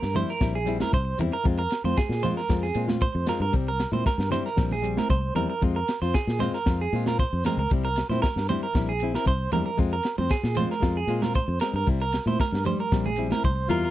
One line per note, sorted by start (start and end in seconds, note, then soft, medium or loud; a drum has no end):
0.00 0.23 G2 medium
0.00 0.14 A#4 loud
0.00 snare medium
0.14 0.31 G3 medium
0.14 0.31 C4 medium
0.14 0.31 E4 medium
0.14 0.29 C5 medium
0.14 high conga medium
0.14 low conga medium
0.14 maracas medium
0.29 0.54 A#4 medium
0.29 snare soft
0.41 0.82 A#1 medium
0.41 0.57 G3 medium
0.41 0.58 C4 medium
0.41 0.58 E4 medium
0.41 kick medium
0.41 snare medium
0.41 maracas medium
0.55 0.80 G#4 medium
0.66 0.80 G3 medium
0.66 0.80 C4 medium
0.66 0.79 E4 medium
0.66 maracas medium
0.80 0.96 C4 medium
0.80 0.96 E4 medium
0.80 0.93 A#4 medium
0.80 snare medium
0.80 high conga medium
0.93 1.13 C2 loud
0.93 1.18 C5 medium
0.93 kick medium
0.93 maracas medium
1.18 1.30 E2 loud
1.18 1.35 G3 medium
1.18 1.35 C4 medium
1.18 1.36 E4 medium
1.18 muted clean electric guitar stroke medium
1.18 maracas medium
1.22 low conga medium
1.33 1.45 A#4 medium
1.44 1.66 F2 medium
1.44 1.61 G#3 medium
1.44 1.62 C4 medium
1.44 1.62 F4 medium
1.44 kick medium
1.44 maracas medium
1.59 1.84 A#4 medium
1.70 snare medium
1.70 maracas loud
1.84 1.94 F2 medium
1.84 2.01 C4 soft
1.84 2.00 F4 medium
1.84 1.97 C5 medium
1.84 high conga medium
1.96 2.22 G#4 loud
1.96 kick loud
1.96 snare medium
1.96 maracas medium
2.09 2.30 A#2 medium
2.09 snare medium
2.22 2.39 G#3 medium
2.22 2.40 C4 medium
2.22 2.40 F4 medium
2.22 2.36 C5 medium
2.22 high conga medium
2.22 low conga medium
2.22 maracas loud
2.37 2.62 A#4 medium
2.37 snare soft
2.49 2.70 F2 loud
2.49 2.66 G#3 medium
2.49 2.66 C4 medium
2.49 2.67 F4 medium
2.49 kick loud
2.49 snare medium
2.49 maracas medium
2.63 2.88 G#4 medium
2.63 snare soft
2.74 3.06 A#2 medium
2.74 2.89 G#3 medium
2.74 2.89 C4 medium
2.74 2.87 F4 medium
2.74 maracas loud
2.88 3.05 C4 medium
2.88 3.04 F4 medium
2.88 snare medium
2.88 high conga medium
3.01 3.26 C5 medium
3.01 kick loud
3.01 maracas medium
3.15 3.25 F2 loud
3.26 3.43 G#3 medium
3.26 3.44 C4 medium
3.26 3.44 F4 medium
3.26 3.41 A#4 medium
3.26 snare medium
3.26 low conga medium
3.26 maracas loud
3.40 3.50 G2 medium
3.40 3.53 A#4 medium
3.52 3.85 C2 medium
3.52 3.69 G3 medium
3.52 3.70 C4 medium
3.52 muted nylon-string guitar stroke medium
3.52 kick medium
3.52 maracas medium
3.68 3.93 A#4 medium
3.80 snare medium
3.80 maracas loud
3.92 4.02 A#2 medium
3.92 4.09 C4 medium
3.92 4.08 E4 medium
3.92 4.05 C5 medium
3.92 high conga medium
3.92 maracas soft
4.06 4.31 A#4 medium
4.06 kick medium
4.06 snare medium
4.06 maracas medium
4.18 4.39 G2 medium
4.18 snare medium
4.30 4.47 G3 medium
4.30 4.48 C4 medium
4.30 4.48 E4 medium
4.30 4.45 C5 medium
4.30 high conga medium
4.30 low conga medium
4.30 maracas loud
4.46 4.70 A#4 medium
4.46 snare soft
4.46 maracas soft
4.56 4.99 A#1 medium
4.56 4.73 G3 medium
4.56 4.74 C4 medium
4.56 4.74 E4 medium
4.56 kick loud
4.56 snare medium
4.56 maracas medium
4.71 4.97 G#4 medium
4.71 snare soft
4.71 high conga medium
4.71 low conga medium
4.82 4.97 G3 medium
4.82 4.97 C4 medium
4.82 maracas loud
4.97 5.14 C4 medium
4.97 5.13 E4 medium
4.97 5.10 A#4 medium
4.97 snare medium
4.97 high conga medium
5.09 5.30 C2 loud
5.09 5.35 C5 medium
5.09 kick medium
5.09 maracas medium
5.35 5.46 E2 medium
5.35 5.52 G3 medium
5.35 5.52 C4 medium
5.35 5.53 E4 medium
5.35 5.48 A#4 medium
5.35 low conga medium
5.35 maracas medium
5.49 5.62 A#4 medium
5.49 maracas soft
5.61 5.82 F2 medium
5.61 5.78 G#3 medium
5.61 5.79 C4 medium
5.61 5.79 F4 medium
5.61 kick loud
5.61 maracas medium
5.76 6.01 A#4 medium
5.88 snare medium
5.88 maracas loud
6.02 6.11 F2 medium
6.02 6.19 C4 medium
6.02 6.17 F4 medium
6.02 6.14 C5 medium
6.14 6.39 G#4 medium
6.14 kick loud
6.14 snare medium
6.14 maracas medium
6.27 6.48 A#2 loud
6.27 snare medium
6.39 6.56 G#3 medium
6.39 6.57 C4 medium
6.39 6.57 F4 medium
6.39 6.53 C5 medium
6.39 high conga medium
6.39 low conga medium
6.39 maracas medium
6.54 6.79 A#4 medium
6.54 snare soft
6.66 6.87 F2 loud
6.66 6.83 G#3 medium
6.66 6.84 C4 medium
6.66 6.84 F4 medium
6.66 kick loud
6.66 snare medium
6.66 maracas medium
6.81 7.06 G#4 medium
6.93 7.24 A#2 loud
6.93 7.06 G#3 medium
6.93 7.07 C4 medium
6.93 7.06 F4 medium
7.06 7.22 C4 medium
7.06 7.22 F4 medium
7.06 7.19 A#4 medium
7.06 snare medium
7.06 high conga medium
7.19 7.44 C5 medium
7.19 kick medium
7.19 maracas medium
7.33 7.42 F2 medium
7.44 7.61 G#3 medium
7.44 7.62 C4 medium
7.44 7.58 A#4 medium
7.44 muted nylon-string guitar stroke medium
7.44 snare medium
7.44 high conga medium
7.44 low conga medium
7.44 maracas loud
7.57 7.67 C#2 loud
7.57 7.71 A#4 medium
7.70 8.02 C2 medium
7.70 7.87 G3 medium
7.70 7.88 C4 medium
7.70 7.88 E4 medium
7.70 kick loud
7.70 maracas medium
7.85 8.09 A#4 medium
7.96 snare medium
7.96 maracas loud
8.09 8.19 A#2 medium
8.09 8.27 C4 medium
8.09 8.26 E4 medium
8.09 8.22 C5 medium
8.09 high conga medium
8.22 8.47 A#4 medium
8.22 kick medium
8.22 snare medium
8.22 maracas medium
8.36 8.56 G2 medium
8.36 snare medium
8.49 8.65 G3 medium
8.49 8.66 C4 medium
8.49 8.66 E4 medium
8.49 8.62 C5 medium
8.49 high conga medium
8.49 low conga medium
8.49 maracas loud
8.63 8.87 A#4 medium
8.73 9.15 A#1 medium
8.73 8.91 G3 medium
8.73 8.92 C4 medium
8.73 8.92 E4 medium
8.73 kick loud
8.73 snare medium
8.73 maracas medium
8.89 9.13 G#4 medium
8.99 9.15 C4 medium
8.99 maracas loud
9.04 9.14 E4 medium
9.14 9.31 C4 soft
9.14 9.30 E4 medium
9.14 9.27 A#4 medium
9.14 snare medium
9.25 9.47 C2 loud
9.25 9.52 C5 medium
9.25 kick medium
9.25 maracas medium
9.52 9.63 E2 medium
9.52 9.69 G3 medium
9.52 9.69 C4 medium
9.52 9.70 E4 medium
9.52 9.65 A#4 medium
9.52 high conga medium
9.52 low conga medium
9.52 maracas medium
9.66 9.78 A#4 medium
9.77 9.99 F2 medium
9.77 9.94 G#3 medium
9.77 9.95 C4 medium
9.77 9.95 F4 medium
9.77 kick medium
9.77 maracas medium
9.93 10.17 A#4 medium
10.03 snare medium
10.03 maracas medium
10.18 10.28 F2 medium
10.18 10.35 C4 medium
10.18 10.30 C5 medium
10.18 muted nylon-string guitar stroke medium
10.18 high conga medium
10.29 10.56 G#4 medium
10.29 kick loud
10.29 snare medium
10.29 maracas medium
10.43 10.64 A#2 loud
10.43 snare medium
10.55 10.72 G#3 medium
10.55 10.73 C4 medium
10.55 10.73 F4 medium
10.55 10.70 C5 medium
10.55 high conga medium
10.55 low conga medium
10.55 maracas medium
10.71 10.96 A#4 medium
10.71 snare soft
10.80 11.03 F2 loud
10.80 10.98 G#3 medium
10.80 10.98 C4 medium
10.80 10.99 F4 medium
10.80 kick loud
10.80 snare medium
10.80 maracas medium
10.97 11.22 G#4 medium
11.07 11.39 A#2 loud
11.07 11.22 G#3 medium
11.07 11.23 C4 medium
11.07 11.22 F4 medium
11.07 maracas loud
11.22 11.39 C4 soft
11.22 11.38 F4 medium
11.22 11.34 A#4 medium
11.22 snare medium
11.22 high conga medium
11.34 11.60 C5 medium
11.34 kick medium
11.34 maracas medium
11.48 11.58 F2 medium
11.59 11.78 G#3 medium
11.59 11.78 C4 medium
11.59 11.74 A#4 medium
11.59 muted nylon-string guitar stroke medium
11.59 snare medium
11.59 maracas loud
11.73 11.84 G2 medium
11.73 11.87 A#4 medium
11.86 12.18 C2 medium
11.86 12.03 G3 medium
11.86 12.04 C4 medium
11.86 12.04 E4 medium
11.86 kick medium
11.86 maracas medium
12.02 12.26 A#4 medium
12.12 snare medium
12.12 maracas loud
12.26 12.36 A#2 medium
12.26 12.43 C4 soft
12.26 12.42 E4 medium
12.26 12.39 C5 medium
12.26 high conga medium
12.26 maracas soft
12.40 12.65 A#4 medium
12.40 kick loud
12.40 snare medium
12.40 maracas medium
12.52 12.73 G2 medium
12.52 snare medium
12.64 12.81 G3 medium
12.64 12.79 C5 medium
12.64 muted nylon-string guitar stroke medium
12.64 high conga medium
12.64 low conga medium
12.64 maracas medium
12.79 13.04 A#4 medium
12.79 maracas soft
12.91 13.32 A#1 medium
12.91 13.08 G3 medium
12.91 13.09 C4 medium
12.91 13.09 E4 medium
12.91 kick medium
12.91 snare medium
12.91 maracas medium
13.06 13.30 G#4 medium
13.06 high conga medium
13.06 low conga medium
13.16 13.31 G3 medium
13.16 13.31 C4 medium
13.16 13.29 E4 medium
13.16 maracas medium
13.30 13.47 C4 medium
13.30 13.46 E4 medium
13.30 13.43 A#4 medium
13.30 snare medium
13.30 high conga medium
13.43 13.67 C2 medium
13.43 13.69 C5 medium
13.43 kick medium
13.43 maracas medium
13.69 13.90 E2 medium
13.69 13.85 G3 medium
13.69 13.86 C4 medium
13.69 13.86 E4 medium
13.69 13.90 F4 medium
13.69 13.83 A#4 medium
13.69 low conga medium
13.69 maracas medium
13.85 13.90 A#4 medium